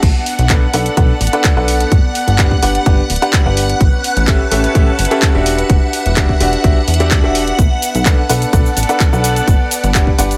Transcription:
Already playing: string section D4 E5 F#5
0.03 analog synth bass B1, string section B3, string machine F#5, kick, closed hi-hat, crash
0.21 string section D5
0.26 open hi-hat
0.39 analog synth bass B1, string section A4, closed hi-hat
0.50 upright piano D4 A4 B4 F#5, kick, clap, closed hi-hat
0.73 analog synth bass B1, upright piano D4 A4 B4 F#5, open hi-hat
0.86 closed hi-hat
0.97 analog synth bass B1, upright piano D4 A4 B4 F#5, kick, closed hi-hat
1.21 analog synth bass A1, open hi-hat
1.27 closed hi-hat
1.33 upright piano D4 A4 B4 F#5, closed hi-hat
1.44 kick, clap, closed hi-hat
1.57 analog synth bass B1, upright piano D4 A4 B4 F#5
1.68 open hi-hat
1.80 closed hi-hat
1.92 analog synth bass G1, kick, closed hi-hat
2.15 open hi-hat
2.28 analog synth bass G1, closed hi-hat
2.34 string section B4
2.39 upright piano D4 G4 B4 F#5, kick, clap, closed hi-hat
2.51 kick
2.62 analog synth bass G1, upright piano D4 G4 B4 F#5, open hi-hat
2.75 closed hi-hat
2.86 analog synth bass G1, upright piano D4 G4 B4 F#5, kick, closed hi-hat
3.10 analog synth bass D1, open hi-hat
3.16 closed hi-hat
3.22 upright piano D4 G4 B4 F#5, closed hi-hat
3.33 kick, clap, closed hi-hat
3.46 analog synth bass G1, upright piano D4 G4 B4 F#5
3.57 open hi-hat
3.69 closed hi-hat
3.80 analog synth bass A1, string section C#4, kick, closed hi-hat
3.99 string section A5
4.04 open hi-hat
4.17 analog synth bass A1, closed hi-hat
4.28 upright piano C#4 G4 A4 E5, kick, clap, closed hi-hat
4.51 analog synth bass A1, upright piano C#4 G4 A4 E5, string section E5, open hi-hat
4.64 closed hi-hat
4.75 analog synth bass A1, upright piano C#4 G4 A4 E5, kick, closed hi-hat
4.99 analog synth bass G1, open hi-hat
5.05 closed hi-hat
5.11 upright piano C#4 G4 A4 E5, closed hi-hat
5.22 kick, clap, closed hi-hat
5.35 analog synth bass E1, upright piano D4 F#4 G4 E5
5.46 string section D4, open hi-hat
5.58 closed hi-hat
5.63 string section F#5
5.70 analog synth bass E1, kick, closed hi-hat
5.93 open hi-hat
6.06 analog synth bass E1, closed hi-hat
6.17 upright piano D4 F#4 G4 E5, kick, clap, closed hi-hat
6.29 kick
6.40 analog synth bass E1, upright piano D4 F#4 G4 E5, open hi-hat
6.53 closed hi-hat
6.64 analog synth bass B1, upright piano D4 F#4 G4 E5, kick, closed hi-hat
6.88 analog synth bass E2, open hi-hat
6.94 closed hi-hat
7.00 upright piano D4 F#4 G4 E5, closed hi-hat
7.11 kick, clap, closed hi-hat
7.24 analog synth bass E1, upright piano D4 F#4 G4 E5
7.35 open hi-hat
7.47 closed hi-hat
7.59 analog synth bass B1, string section B3, kick, closed hi-hat, shaker
7.82 open hi-hat, shaker
7.95 analog synth bass B1, closed hi-hat, shaker
8.06 upright piano D4 A4 B4 F#5, string section A4, kick, clap, closed hi-hat, shaker
8.29 analog synth bass B1, upright piano D4 A4 B4 F#5, open hi-hat, shaker
8.42 string section D5, closed hi-hat, shaker
8.53 analog synth bass B1, upright piano D4 A4 B4 F#5, kick, closed hi-hat, shaker
8.66 shaker
8.77 analog synth bass A1, open hi-hat, shaker
8.83 closed hi-hat
8.89 upright piano D4 A4 B4 F#5, closed hi-hat, shaker
9.00 kick, clap, closed hi-hat, shaker
9.13 analog synth bass B1, upright piano D4 A4 B4 F#5, shaker
9.24 open hi-hat, shaker
9.36 closed hi-hat, shaker
9.48 analog synth bass G1, kick, closed hi-hat, shaker
9.71 open hi-hat, shaker
9.84 analog synth bass G1, closed hi-hat, shaker
9.92 upright piano D4 G4 B4 F#5, string section B4, kick, clap, closed hi-hat, shaker
10.07 kick
10.18 analog synth bass G1, upright piano D4 G4 B4 F#5, open hi-hat, shaker
10.31 closed hi-hat, shaker

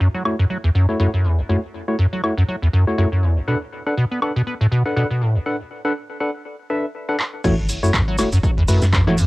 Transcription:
0.00 acid bass F#2
0.14 acid bass F#3
0.25 synth stab A3 E4 F#4 C#5, high woodblock
0.39 acid bass F#2
0.50 acid bass F#3
0.64 acid bass E2
0.75 acid bass F#2
0.89 synth stab A3 E4 F#4 C#5
1.00 acid bass F#2, synth stab A3 E4 F#4 C#5
1.14 acid bass F#2
1.25 acid bass E2
1.39 acid bass F#1
1.49 acid bass F#2, synth stab A3 E4 F#4 C#5
1.88 synth stab A3 E4 F#4 C#5
1.99 acid bass F#2
2.13 acid bass F#3
2.24 synth stab A3 E4 F#4 C#5, high woodblock
2.38 acid bass F#2
2.48 acid bass F#3
2.62 acid bass E2
2.73 acid bass F#2
2.87 synth stab A3 E4 F#4 C#5
2.98 acid bass F#2, synth stab A3 E4 F#4 C#5
3.12 acid bass F#2
3.23 acid bass E2
3.37 acid bass F#1
3.48 acid bass B2, synth stab D4 A4 B4 F#5
3.86 synth stab D4 A4 B4 F#5
3.97 acid bass B2
4.11 acid bass B3
4.22 synth stab D4 A4 B4 F#5, high woodblock
4.36 acid bass B2
4.47 acid bass B3
4.61 acid bass A2
4.72 acid bass B2
4.86 synth stab D4 A4 B4 F#5
4.96 acid bass B2, synth stab D4 A4 B4 F#5
5.10 acid bass B2
5.21 acid bass A2
5.35 acid bass B1
5.46 synth stab D4 A4 B4 F#5
5.85 synth stab D4 A4 B4 F#5
6.20 synth stab D4 A4 B4 F#5
6.70 synth stab D4 A4 B4 E5
7.09 synth stab D4 A4 B4 F#5
7.20 clap
7.44 sub bass F#1, acid bass F#2, synth stab A3 E4 F#4 C#5, kick, crash, low conga, cabasa
7.69 open hi-hat, cabasa
7.83 sub bass F#2, synth stab A3 E4 F#4 C#5, cabasa
7.94 acid bass F#2, kick, clap, cabasa
8.08 acid bass F#3
8.18 sub bass E1, synth stab A3 E4 F#4 C#5, snare, open hi-hat, cabasa, high woodblock
8.32 acid bass F#2, cabasa
8.44 acid bass F#3, kick, cabasa
8.58 acid bass E2
8.68 acid bass F#2, synth stab A3 E4 F#4 B4, open hi-hat, cabasa
8.82 sub bass F#2, snare, cabasa
8.93 acid bass F#2, kick, clap, cabasa
9.07 acid bass F#2, synth stab A3 E4 F#4 C#5, snare, low conga
9.18 acid bass E2, open hi-hat, cabasa

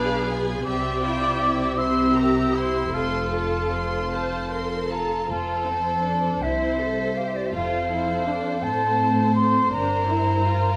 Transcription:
Already playing: double bass section B1, cello section B2, violin section D4 D5 F5, viola section G#4, cor anglais B4
0.30 violin section F4 B4 G#5
0.65 double bass section C2, cello section C3, viola section G4, violin section G4 C5 E5, cor anglais D5
1.03 violin section E4 E5 G5, viola section F4
1.39 viola section E4, violin section G4 C5 E5
1.77 violin section E4 C5 C6, viola section G4, cor anglais E5
2.15 violin section G4 A#4 A#5
2.54 violin section E4 C5 C6, cor anglais E4
2.93 double bass section F1, cello section F2, cor anglais F4, violin section A4 C5 C6, viola section A4
3.33 violin section F4 A4 A5
3.71 violin section A4 C5 C6
4.11 violin section F4 A4 A5, viola section C5
4.51 violin section A4 C5 C6, viola section A#4
4.90 violin section F4 A4 A5, viola section A4, flute A#5
5.29 double bass section F1, cello section F2, viola section F4, violin section A4 C5, flute A5
5.67 viola section C4
6.04 viola section D4
6.41 cello section C2, double bass section C2, viola section E4, violin section C5, flute E5
6.79 viola section A4
7.17 viola section G4, flute F5
7.28 flute E5
7.36 flute D5
7.46 flute E5
7.52 double bass section F1, cello section F2, viola section F4, violin section A4 C5, flute F5
7.91 viola section E4
8.27 viola section D4
8.63 cello section A2, viola section C4, violin section C5, flute A5
9.36 flute C6
9.72 double bass section G1, cello section G2, viola section D4, violin section A#4, flute A#5
10.09 viola section E4
10.46 viola section F4

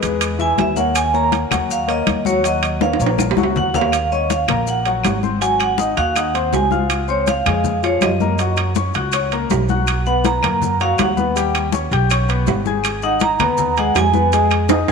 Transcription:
0.02 upright bass E2, grand piano G#3 G#4 B4, high timbale, maracas
0.21 high conga, high timbale, claves, maracas
0.39 grand piano E3 E4 E5, vibraphone G#5, high conga, maracas
0.58 upright bass D#2, vibraphone E5, high conga, high timbale, low timbale, maracas
0.76 grand piano A#3 A#4 C#5, vibraphone F#5, high conga, maracas
0.95 vibraphone G#5, high conga, high timbale, claves, maracas
1.13 grand piano A#3 A#4 C#5, vibraphone A#5, high conga, maracas
1.32 high conga, high timbale, maracas
1.51 upright bass D#2, grand piano F#3 F#4 F#5, high conga, low conga, high timbale, claves, maracas
1.69 vibraphone F5, high conga, maracas
1.87 grand piano A#3 A#4 C#5, vibraphone D#5, high conga, high timbale, maracas
2.07 upright bass D#2, high conga, high timbale, claves, maracas
2.25 grand piano F#3 F#4 F#5, vibraphone C#5, high conga, maracas
2.44 grand piano F#3 F#4 F#5, vibraphone D#5, high conga, high timbale, maracas
2.63 high conga, high timbale, claves, maracas
2.81 grand piano A#3 A#4 C#5, vibraphone F5, high conga, high timbale, maracas
2.93 high timbale
2.99 upright bass A#1, grand piano A#3 A#4 C#5, maracas
3.06 high timbale
3.18 high conga, high timbale, claves, maracas
3.31 low timbale
3.37 upright bass C#2, grand piano F#3 F#4 F#5, high conga, maracas
3.43 low timbale
3.56 upright bass D#2, vibraphone F#5, low conga, maracas
3.74 grand piano A#3 A#4 C#5, vibraphone F5, low conga, maracas
3.81 low timbale
3.92 high conga, high timbale, claves, maracas
4.12 grand piano C#4 C#5 C#6, vibraphone D#5, high conga, maracas
4.30 vibraphone F5, high conga, high timbale, low timbale, maracas
4.48 upright bass A#1, grand piano A#3 A#4 A#5, high conga, low conga, high timbale, claves, maracas
4.67 vibraphone F#5, high conga, maracas
4.86 grand piano F#3 F#4 F#5, high conga, high timbale, maracas
5.04 upright bass G#1, high conga, high timbale, low timbale, claves, maracas
5.23 grand piano C4 C5 C6, high conga, maracas
5.41 grand piano F#3 F#4 F#5, vibraphone G#5, high timbale, maracas
5.60 vibraphone F#5, high conga, high timbale, claves, maracas
5.78 grand piano D#4 D#5 D#6, high conga, low timbale, maracas
5.97 upright bass D#2, grand piano F#4 F#5 F#6, vibraphone F5, high conga, high timbale, maracas
6.16 grand piano D#4 D#5 D#6, vibraphone F#5, high conga, high timbale, claves, maracas
6.34 grand piano C4 C5 C6, high conga, high timbale, maracas
6.53 upright bass C#2, vibraphone G#5, high conga, low timbale, maracas
6.71 grand piano F4 F5 F6, high conga, maracas
6.90 high conga, high timbale, claves, maracas
7.08 grand piano C4 C5 C6, vibraphone C#5, high conga, maracas
7.27 vibraphone F5, high conga, high timbale, low timbale, maracas
7.46 upright bass F2, grand piano G#3 G#4 G#5, high conga, low conga, high timbale, claves, maracas
7.64 high conga, low conga, maracas
7.83 grand piano F3 F4 F5, vibraphone C#5, high conga, high timbale, maracas
8.01 upright bass F#2, vibraphone D#5, high conga, high timbale, low timbale, claves, maracas
8.20 grand piano A#3 A#4 A#5, high conga, maracas
8.38 grand piano F#3 F#4 F#5, high conga, high timbale, maracas
8.56 high conga, high timbale, claves, maracas
8.75 grand piano C#4 C#5 C#6, high conga, low timbale, maracas
8.94 upright bass C#2, grand piano F#4 F#5 F#6, high conga, high timbale, maracas
9.12 grand piano C#4 C#5 C#6, high conga, high timbale, claves, maracas
9.31 grand piano A#3 A#4 A#5, high conga, high timbale, maracas
9.50 upright bass B1, high conga, low timbale, maracas
9.69 grand piano F#4 F#5 F#6, high conga, maracas
9.87 high conga, high timbale, claves, maracas
10.06 grand piano B3 B4 B5, vibraphone F#5, high conga, maracas
10.25 vibraphone A#5, high conga, high timbale, low timbale, maracas
10.43 upright bass F#2, grand piano A#3 A#4 A#5, high conga, low conga, high timbale, claves, maracas
10.62 high conga, low conga, maracas
10.80 grand piano F#3 F#4 F#5, vibraphone F5, high conga, high timbale, maracas
10.98 upright bass D#2, vibraphone F#5, high conga, high timbale, low timbale, claves, maracas
11.17 grand piano B3 B4 B5, high conga, maracas
11.36 grand piano G3 G4 G5, high timbale, maracas
11.55 high conga, high timbale, claves, maracas
11.72 grand piano C#4 C#5 C#6, high conga, low timbale, maracas
11.91 upright bass B1, grand piano G4 G5 G6, high conga, high timbale, maracas
12.09 grand piano C#4 C#5 C#6, high conga, high timbale, claves, maracas
12.28 grand piano B3 B4 B5, high conga, high timbale, maracas
12.47 upright bass G#1, high conga, low timbale, maracas
12.66 grand piano G#4 G#5 G#6, high conga, maracas
12.84 high conga, high timbale, claves, maracas
13.02 grand piano D#4 D#5 D#6, vibraphone F#5, high conga, maracas
13.20 vibraphone A#5, high conga, high timbale, low timbale, maracas
13.39 upright bass D#2, grand piano B3 B4 F#5, high conga, low conga, high timbale, claves, maracas
13.57 high conga, low conga, maracas
13.77 grand piano G#3 G#4 G#5, vibraphone F#5, high conga, high timbale, maracas
13.95 upright bass F2, vibraphone G#5, high conga, high timbale, low timbale, claves, maracas
14.14 grand piano B3 B4 B5, high conga, maracas
14.32 grand piano G#3 G#4 G#5, high conga, high timbale, maracas
14.50 high conga, high timbale, claves, maracas
14.69 grand piano D#4 D#5 D#6, high conga, high timbale, maracas
14.88 upright bass A#1, grand piano G#4, high conga, high timbale, maracas

